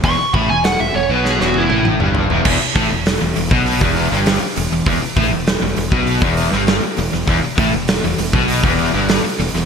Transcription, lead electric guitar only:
0.05 0.34 C#6 loud
0.34 0.49 B5 loud
0.49 0.64 G#5 medium
0.65 0.80 F#5 medium
0.80 0.95 E5 loud
0.96 1.11 C#5 loud
1.11 1.25 B4 loud
1.25 1.40 G#4 loud
1.42 1.56 F#4 loud
1.58 1.86 E4 loud

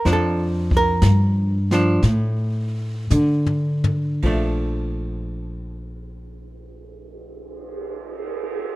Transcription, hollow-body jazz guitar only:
0.05 1.57 F3 medium
0.05 1.58 D4 medium
0.13 0.73 A4 medium
0.77 2.02 A#4 loud
1.72 2.01 F3 medium
1.72 2.01 D4 medium
4.23 8.67 F3 medium
4.23 8.69 A3 medium
4.23 8.70 D4 medium

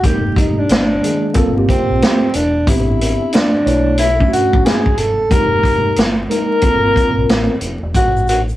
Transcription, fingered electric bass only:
0.04 0.59 F1 medium
0.70 0.97 G1 loud
1.35 1.80 G1 medium
1.90 2.00 A#1 medium
2.35 2.67 E1 medium
2.67 3.22 A1 medium
3.66 4.21 B1 loud
4.53 4.63 A1 medium
4.98 5.26 F#1 medium
5.31 5.86 F1 medium
5.97 6.25 G1 medium
6.62 7.08 G1 medium
7.17 7.27 A#1 medium
7.29 7.46 A1 medium
7.61 7.79 F1 medium
7.82 7.93 E1 medium
7.95 8.50 A1 medium

